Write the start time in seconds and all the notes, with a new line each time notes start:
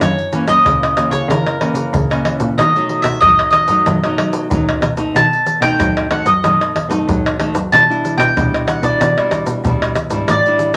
Already playing: E3 A#3 C#4
0.01 F#2 C#5, pandeiro, tamborim, shaker, surdo
0.18 pandeiro, shaker
0.32 E3 A#3 C#4, pandeiro, shaker
0.46 F#2 E3 A#3 C#4 D#5, pandeiro, tamborim, shaker, surdo
0.65 C#3, pandeiro, tamborim, shaker, surdo
0.83 pandeiro, tamborim, shaker
0.96 E3 A#3 C#4, pandeiro, tamborim, shaker
1.11 C#3 C#5, pandeiro, shaker, surdo
1.29 F#2 C#3 A#4, pandeiro, tamborim, shaker, surdo
1.47 pandeiro, tamborim, shaker
1.61 E3 A#3 C#4, pandeiro, tamborim
1.74 C#3, pandeiro, shaker
1.93 C#3, pandeiro, shaker, surdo
2.10 E3 A#3 C#4, pandeiro, tamborim, shaker, surdo
2.25 pandeiro, tamborim
2.40 A#2, pandeiro, shaker, surdo
2.58 B2 F#3 A3 D#4 D#5, pandeiro, tamborim, shaker, surdo
2.75 F#3 A3 D#4, pandeiro, shaker
2.89 pandeiro
3.02 B2 E5, pandeiro, tamborim, shaker, surdo
3.21 F#2 F#3 A3 D#4 D#5, pandeiro, tamborim, shaker, surdo
3.39 pandeiro, tamborim, shaker
3.50 D#5, pandeiro, tamborim, shaker
3.68 F#2 F#3 A3 D#4, pandeiro, shaker, surdo
3.86 F#2 B2, pandeiro, tamborim, shaker, surdo
4.04 F#3 A3 D#4, pandeiro, tamborim, shaker
4.17 F#3, pandeiro, tamborim
4.33 pandeiro, shaker
4.51 F#2 D#3 F#3 A3 D#4, pandeiro, shaker, surdo
4.69 pandeiro, tamborim, shaker, surdo
4.81 B2, pandeiro, tamborim, shaker
4.97 A3 C4 D#4, pandeiro, shaker, surdo
5.15 B2 A5, pandeiro, tamborim, shaker, surdo
5.33 pandeiro, shaker
5.46 pandeiro, shaker
5.61 B2 A3 C4 D#4 G5, pandeiro, tamborim, shaker, surdo
5.80 F#2 F#3, pandeiro, tamborim, shaker, surdo
5.97 pandeiro, tamborim, shaker
6.10 A3 C4 D#4 F#5, pandeiro, tamborim
6.26 F#2 D#5, pandeiro, shaker, surdo
6.44 F#2 B2 A3 C4 D#4, pandeiro, tamborim, shaker, surdo
6.61 pandeiro, tamborim, shaker
6.76 pandeiro, tamborim, surdo
6.89 F#2 A3 C4 D#4, pandeiro, shaker
7.08 F#2 F#3, pandeiro, shaker, surdo
7.26 pandeiro, tamborim, shaker, surdo
7.40 A3 C4 D#4, pandeiro, tamborim
7.54 F#2, pandeiro, shaker, surdo
7.72 B2 G3 D4 E4 A5, pandeiro, tamborim, shaker, surdo
7.89 G3 D4 E4, pandeiro, shaker
8.05 pandeiro, shaker
8.18 B2 G5, pandeiro, tamborim, shaker, surdo
8.37 B2 G3 D4 E4, pandeiro, tamborim, shaker, surdo
8.54 pandeiro, tamborim, shaker
8.67 F#5, pandeiro, tamborim, shaker
8.82 B2 G3 D4 E4 D5, pandeiro, shaker, surdo
9.01 B2, pandeiro, tamborim, shaker, surdo
9.18 G3 D4 E4, pandeiro, tamborim, shaker
9.31 pandeiro, tamborim, shaker, surdo
9.46 B2, pandeiro, shaker
9.64 B2 G3 D4 E4, pandeiro, shaker, surdo
9.82 pandeiro, tamborim, shaker, surdo
9.95 pandeiro, tamborim, shaker
10.10 G#2 G3 D4 E4, pandeiro, shaker, surdo
10.28 A2 D5, pandeiro, tamborim, shaker, surdo
10.46 G3 D4 E4, pandeiro, shaker
10.59 pandeiro, shaker